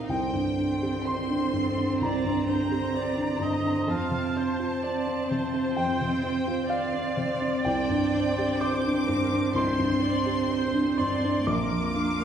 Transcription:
Already playing: grand piano C2 D#4 A#4 D#5 F5
0.09 grand piano C2 G5, harmonium D3 G4 C5, cello C4, violin section G5
0.33 grand piano G2
0.58 grand piano D4
0.82 grand piano G4
1.05 grand piano C5 C6, violin section C6
1.29 grand piano D4
1.53 grand piano G2
1.77 grand piano D4
2.00 grand piano C2 A#5, viola D5, violin section A#5
2.24 grand piano G2
2.47 grand piano D4, viola C5
2.71 grand piano G4
2.94 grand piano C5, viola D5
3.17 grand piano D4
3.40 grand piano G2, viola D#5
3.64 grand piano D4
3.87 grand piano F2 A5, cello C4, harmonium C4 F4 C5, viola F5, violin section A5
4.11 grand piano C3
4.36 grand piano C4, viola C5
4.60 grand piano F4
4.83 grand piano C5, viola D5
5.07 grand piano C4
5.29 grand piano C3, viola C5
5.54 grand piano C4
5.76 grand piano F2 G5, violin section G5
6.01 grand piano C3
6.23 grand piano C4
6.48 grand piano F4
6.68 grand piano C5 F5, viola D5, violin section F5
6.93 grand piano C4
7.17 grand piano C3
7.41 grand piano C4
7.62 grand piano C2 G5, cello C4, harmonium D4 G4 C5, violin section G5
7.89 grand piano G2
8.13 grand piano D4
8.38 grand piano G4
8.59 viola C5, grand piano C5 D6, violin section D6
8.86 grand piano D4
9.08 grand piano G2, viola A#4
9.32 grand piano D4
9.54 grand piano C2 C6, viola C5, violin section C6
9.79 grand piano G2
10.02 grand piano D4, viola D5
10.26 grand piano G4
10.50 viola C5, grand piano C5
10.74 grand piano D4
10.98 grand piano G2 C6, viola D5, violin section C6
11.24 grand piano D4
11.45 grand piano A#1 D6, cello A#3, harmonium F4 A#5, viola A#4, violin section D6
11.71 grand piano F2
11.94 grand piano D4, viola F5
12.19 grand piano A#4

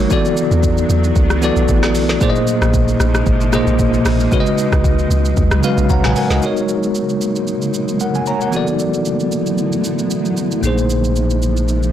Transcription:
Already playing: ambient pad F#3, tine electric piano G#3 D#4 F#4 A#4 C#5
0.10 tine electric piano E3 B3 F#4 A4 D5, ambient pad A3 B3 D4 E4, kick, shaker
0.25 shaker
0.37 shaker
0.51 log drum bass E2, shaker
0.63 kick, shaker
0.78 shaker
0.90 log drum bass E2, shaker
1.04 shaker
1.16 log drum bass C#2, kick, shaker
1.30 cross-stick, shaker
1.42 tine electric piano E3 B3 F#4 A4 D5, shaker
1.57 log drum bass B1, shaker
1.68 log drum bass A1, kick, shaker
1.83 cross-stick, snare, shaker
1.95 log drum bass B1, open hi-hat, shaker
2.09 snare, shaker
2.21 tine electric piano A#2 A#3 G#4 C5 D5, ambient pad C3 F3 G#3 A#3 D#4, kick, shaker
2.30 tine electric piano D#5
2.36 shaker
2.48 shaker
2.62 log drum bass A#1, cross-stick, shaker
2.74 kick, shaker
2.88 shaker
3.00 log drum bass A#1, cross-stick, shaker
3.15 cross-stick, shaker
3.26 log drum bass G#1, kick, shaker
3.41 shaker
3.52 tine electric piano A#2 A#3 G#4 C5 D#5, cross-stick, shaker
3.67 log drum bass A#1, shaker
3.79 kick, shaker
3.94 shaker
4.05 log drum bass A#1, cross-stick, open hi-hat, shaker
4.20 shaker
4.31 tine electric piano C#3 G#3 F#4 B4 C#5, ambient pad C#3 F#3 B3, kick, shaker
4.40 tine electric piano D#5
4.46 shaker
4.58 shaker
4.73 log drum bass C#2, kick, cross-stick, shaker
4.84 kick, shaker
4.99 shaker
5.11 log drum bass C#2, shaker
5.25 shaker
5.37 log drum bass D#2, kick, shaker
5.51 log drum bass C#2, cross-stick, shaker
5.63 tine electric piano C#3 G#3 F#4 B4 F5, shaker
5.78 log drum bass B1, shaker
5.90 log drum bass C#2, tine electric piano C#5 F#5 A#5, kick, shaker
6.04 log drum bass B1, tine electric piano B4 G#5, cross-stick, snare, mid tom, shaker
6.16 tine electric piano A#4 F#5 G#5, open hi-hat, shaker
6.30 log drum bass C#2, tine electric piano F#4 D#5, snare, shaker
6.40 ambient pad C#3 F#3 G#3 A#3 D#4, tine electric piano G#3 D#4 F#4, shaker
6.44 tine electric piano A#4 C#5
6.57 shaker
6.69 shaker
6.83 shaker
6.95 shaker
7.09 shaker
7.21 shaker
7.36 shaker
7.47 shaker
7.62 shaker
7.74 shaker
7.88 shaker
8.00 tine electric piano A#4 F#5, shaker
8.15 tine electric piano G#5, shaker
8.26 tine electric piano C#5 A#5, shaker
8.41 tine electric piano A#4 F#5, shaker
8.51 ambient pad D3 F#3 A3 B3 E4, tine electric piano E3 B3 F#4, shaker
8.55 tine electric piano A4 D5
8.67 shaker
8.79 shaker
8.94 shaker
9.05 shaker
9.20 shaker
9.32 shaker
9.46 shaker
9.58 shaker
9.72 shaker
9.84 shaker
9.99 shaker
10.11 shaker
10.25 shaker
10.37 shaker
10.52 shaker
10.61 sub bass A#1, tine electric piano A#2 A#3 D#4, ambient pad C3 F3 G#3 A#3 D#4, shaker
10.65 tine electric piano G#4 C5
10.78 shaker
10.90 shaker
11.04 shaker
11.16 shaker
11.30 shaker
11.42 shaker
11.57 shaker
11.69 shaker
11.83 shaker

